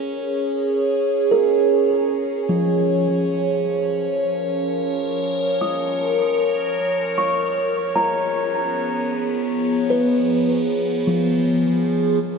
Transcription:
0, 0, Header, 1, 3, 480
1, 0, Start_track
1, 0, Tempo, 779221
1, 334, Time_signature, 3, 2, 24, 8
1, 7627, End_track
2, 0, Start_track
2, 0, Title_t, "Kalimba"
2, 0, Program_c, 0, 108
2, 0, Note_on_c, 0, 70, 75
2, 802, Note_off_c, 0, 70, 0
2, 809, Note_on_c, 0, 70, 53
2, 1535, Note_on_c, 0, 53, 45
2, 3001, Note_off_c, 0, 70, 0
2, 3458, Note_on_c, 0, 87, 57
2, 3724, Note_off_c, 0, 53, 0
2, 4422, Note_on_c, 0, 85, 56
2, 4512, Note_off_c, 0, 87, 0
2, 4901, Note_on_c, 0, 82, 66
2, 4994, Note_off_c, 0, 85, 0
2, 6099, Note_on_c, 0, 71, 56
2, 6820, Note_on_c, 0, 53, 48
2, 7087, Note_off_c, 0, 82, 0
2, 7627, Note_off_c, 0, 53, 0
2, 7627, Note_off_c, 0, 71, 0
2, 7627, End_track
3, 0, Start_track
3, 0, Title_t, "Ambient pad"
3, 0, Program_c, 1, 92
3, 0, Note_on_c, 1, 61, 73
3, 0, Note_on_c, 1, 68, 81
3, 0, Note_on_c, 1, 73, 73
3, 1759, Note_on_c, 1, 53, 72
3, 2474, Note_on_c, 1, 70, 86
3, 2927, Note_off_c, 1, 68, 0
3, 4808, Note_on_c, 1, 68, 70
3, 4866, Note_on_c, 1, 59, 91
3, 5394, Note_off_c, 1, 61, 0
3, 5801, Note_off_c, 1, 70, 0
3, 7627, Note_off_c, 1, 53, 0
3, 7627, Note_off_c, 1, 59, 0
3, 7627, Note_off_c, 1, 68, 0
3, 7627, Note_off_c, 1, 73, 0
3, 7627, End_track
0, 0, End_of_file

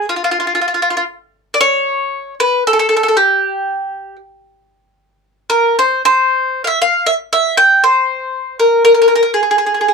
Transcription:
0, 0, Header, 1, 2, 480
1, 0, Start_track
1, 0, Key_signature, -4, "minor"
1, 0, Tempo, 512821
1, 68, Time_signature, 3, 2, 24, 8
1, 2948, Tempo, 519931
1, 9214, End_track
2, 0, Start_track
2, 0, Title_t, "Mandolin"
2, 0, Program_c, 0, 25
2, 86, Note_on_c, 0, 65, 63
2, 143, Note_off_c, 0, 65, 0
2, 153, Note_on_c, 0, 65, 39
2, 211, Note_off_c, 0, 65, 0
2, 225, Note_on_c, 0, 65, 60
2, 282, Note_off_c, 0, 65, 0
2, 294, Note_on_c, 0, 65, 50
2, 351, Note_off_c, 0, 65, 0
2, 373, Note_on_c, 0, 65, 47
2, 425, Note_off_c, 0, 65, 0
2, 440, Note_on_c, 0, 65, 39
2, 492, Note_off_c, 0, 65, 0
2, 514, Note_on_c, 0, 65, 47
2, 564, Note_off_c, 0, 65, 0
2, 575, Note_on_c, 0, 65, 43
2, 623, Note_off_c, 0, 65, 0
2, 635, Note_on_c, 0, 65, 41
2, 684, Note_off_c, 0, 65, 0
2, 695, Note_on_c, 0, 65, 40
2, 759, Note_off_c, 0, 65, 0
2, 769, Note_on_c, 0, 65, 54
2, 830, Note_off_c, 0, 65, 0
2, 846, Note_on_c, 0, 65, 42
2, 895, Note_off_c, 0, 65, 0
2, 907, Note_on_c, 0, 65, 55
2, 968, Note_off_c, 0, 65, 0
2, 1442, Note_on_c, 0, 74, 79
2, 1500, Note_off_c, 0, 74, 0
2, 1503, Note_on_c, 0, 73, 100
2, 2189, Note_off_c, 0, 73, 0
2, 2247, Note_on_c, 0, 71, 85
2, 2459, Note_off_c, 0, 71, 0
2, 2501, Note_on_c, 0, 69, 79
2, 2546, Note_off_c, 0, 69, 0
2, 2558, Note_on_c, 0, 69, 59
2, 2604, Note_off_c, 0, 69, 0
2, 2615, Note_on_c, 0, 69, 66
2, 2676, Note_off_c, 0, 69, 0
2, 2704, Note_on_c, 0, 69, 58
2, 2756, Note_off_c, 0, 69, 0
2, 2776, Note_on_c, 0, 69, 57
2, 2827, Note_off_c, 0, 69, 0
2, 2839, Note_on_c, 0, 69, 58
2, 2876, Note_off_c, 0, 69, 0
2, 2887, Note_on_c, 0, 69, 53
2, 2950, Note_off_c, 0, 69, 0
2, 2965, Note_on_c, 0, 67, 71
2, 3878, Note_off_c, 0, 67, 0
2, 5115, Note_on_c, 0, 70, 77
2, 5356, Note_off_c, 0, 70, 0
2, 5384, Note_on_c, 0, 72, 76
2, 5591, Note_off_c, 0, 72, 0
2, 5628, Note_on_c, 0, 72, 85
2, 6170, Note_off_c, 0, 72, 0
2, 6173, Note_on_c, 0, 77, 62
2, 6195, Note_off_c, 0, 77, 0
2, 6200, Note_on_c, 0, 76, 80
2, 6304, Note_off_c, 0, 76, 0
2, 6333, Note_on_c, 0, 77, 91
2, 6562, Note_on_c, 0, 76, 84
2, 6567, Note_off_c, 0, 77, 0
2, 6624, Note_off_c, 0, 76, 0
2, 6804, Note_on_c, 0, 76, 81
2, 7021, Note_off_c, 0, 76, 0
2, 7033, Note_on_c, 0, 79, 95
2, 7275, Note_off_c, 0, 79, 0
2, 7275, Note_on_c, 0, 72, 87
2, 7957, Note_off_c, 0, 72, 0
2, 7975, Note_on_c, 0, 70, 69
2, 8196, Note_off_c, 0, 70, 0
2, 8207, Note_on_c, 0, 70, 84
2, 8282, Note_off_c, 0, 70, 0
2, 8298, Note_on_c, 0, 70, 59
2, 8353, Note_off_c, 0, 70, 0
2, 8364, Note_on_c, 0, 70, 73
2, 8410, Note_off_c, 0, 70, 0
2, 8421, Note_on_c, 0, 70, 62
2, 8481, Note_off_c, 0, 70, 0
2, 8492, Note_on_c, 0, 70, 67
2, 8547, Note_off_c, 0, 70, 0
2, 8558, Note_on_c, 0, 70, 61
2, 8631, Note_off_c, 0, 70, 0
2, 8662, Note_on_c, 0, 68, 58
2, 8733, Note_off_c, 0, 68, 0
2, 8744, Note_on_c, 0, 68, 42
2, 8808, Note_off_c, 0, 68, 0
2, 8819, Note_on_c, 0, 68, 53
2, 8875, Note_off_c, 0, 68, 0
2, 8886, Note_on_c, 0, 68, 47
2, 8951, Note_off_c, 0, 68, 0
2, 8962, Note_on_c, 0, 68, 38
2, 9024, Note_off_c, 0, 68, 0
2, 9035, Note_on_c, 0, 68, 34
2, 9084, Note_off_c, 0, 68, 0
2, 9095, Note_on_c, 0, 68, 39
2, 9154, Note_off_c, 0, 68, 0
2, 9165, Note_on_c, 0, 68, 41
2, 9214, Note_off_c, 0, 68, 0
2, 9214, End_track
0, 0, End_of_file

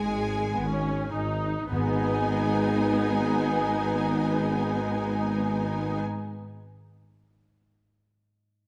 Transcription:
0, 0, Header, 1, 9, 480
1, 0, Start_track
1, 0, Key_signature, 5, "minor"
1, 0, Tempo, 500000
1, 8328, End_track
2, 0, Start_track
2, 0, Title_t, "Violin section"
2, 0, Program_c, 0, 48
2, 0, Note_on_c, 0, 80, 53
2, 1078, Note_off_c, 0, 80, 0
2, 1652, Note_on_c, 0, 80, 51
2, 5754, Note_off_c, 0, 80, 0
2, 8328, End_track
3, 0, Start_track
3, 0, Title_t, "Violin section"
3, 0, Program_c, 1, 48
3, 0, Note_on_c, 1, 68, 50
3, 1082, Note_off_c, 1, 68, 0
3, 1652, Note_on_c, 1, 68, 48
3, 5753, Note_off_c, 1, 68, 0
3, 8328, End_track
4, 0, Start_track
4, 0, Title_t, "Harp"
4, 0, Program_c, 2, 46
4, 0, Note_on_c, 2, 44, 39
4, 0, Note_on_c, 2, 59, 32
4, 0, Note_on_c, 2, 63, 33
4, 0, Note_on_c, 2, 68, 30
4, 1591, Note_off_c, 2, 44, 0
4, 1654, Note_on_c, 2, 44, 36
4, 1723, Note_on_c, 2, 56, 36
4, 1777, Note_off_c, 2, 59, 0
4, 1789, Note_on_c, 2, 59, 35
4, 1847, Note_off_c, 2, 63, 0
4, 1858, Note_on_c, 2, 63, 36
4, 1910, Note_off_c, 2, 68, 0
4, 1922, Note_on_c, 2, 68, 38
4, 1988, Note_on_c, 2, 75, 35
4, 5755, Note_off_c, 2, 44, 0
4, 5824, Note_off_c, 2, 56, 0
4, 5890, Note_off_c, 2, 59, 0
4, 5960, Note_off_c, 2, 63, 0
4, 6023, Note_off_c, 2, 68, 0
4, 6090, Note_off_c, 2, 75, 0
4, 8328, End_track
5, 0, Start_track
5, 0, Title_t, "Viola section"
5, 0, Program_c, 3, 48
5, 0, Note_on_c, 3, 56, 45
5, 483, Note_off_c, 3, 56, 0
5, 521, Note_on_c, 3, 59, 45
5, 654, Note_off_c, 3, 59, 0
5, 655, Note_on_c, 3, 61, 47
5, 1064, Note_off_c, 3, 61, 0
5, 1070, Note_on_c, 3, 63, 45
5, 1633, Note_off_c, 3, 63, 0
5, 1644, Note_on_c, 3, 63, 48
5, 1646, Note_on_c, 3, 59, 46
5, 5746, Note_off_c, 3, 63, 0
5, 5747, Note_off_c, 3, 59, 0
5, 8328, End_track
6, 0, Start_track
6, 0, Title_t, "Cello section"
6, 0, Program_c, 4, 48
6, 0, Note_on_c, 4, 56, 46
6, 1084, Note_off_c, 4, 56, 0
6, 1654, Note_on_c, 4, 56, 44
6, 5756, Note_off_c, 4, 56, 0
6, 8328, End_track
7, 0, Start_track
7, 0, Title_t, "Timpani"
7, 0, Program_c, 5, 47
7, 1653, Note_on_c, 5, 44, 33
7, 5754, Note_off_c, 5, 44, 0
7, 8328, End_track
8, 0, Start_track
8, 0, Title_t, "Double bass section"
8, 0, Program_c, 6, 48
8, 0, Note_on_c, 6, 32, 44
8, 462, Note_off_c, 6, 32, 0
8, 532, Note_on_c, 6, 32, 45
8, 1013, Note_off_c, 6, 32, 0
8, 1076, Note_on_c, 6, 32, 42
8, 1582, Note_off_c, 6, 32, 0
8, 1642, Note_on_c, 6, 32, 46
8, 5743, Note_off_c, 6, 32, 0
8, 8328, End_track
9, 0, Start_track
9, 0, Title_t, "Tuba"
9, 0, Program_c, 7, 58
9, 0, Note_on_c, 7, 32, 41
9, 460, Note_off_c, 7, 32, 0
9, 534, Note_on_c, 7, 32, 43
9, 1014, Note_off_c, 7, 32, 0
9, 1077, Note_on_c, 7, 32, 44
9, 1497, Note_off_c, 7, 32, 0
9, 1649, Note_on_c, 7, 32, 47
9, 5750, Note_off_c, 7, 32, 0
9, 8328, End_track
0, 0, End_of_file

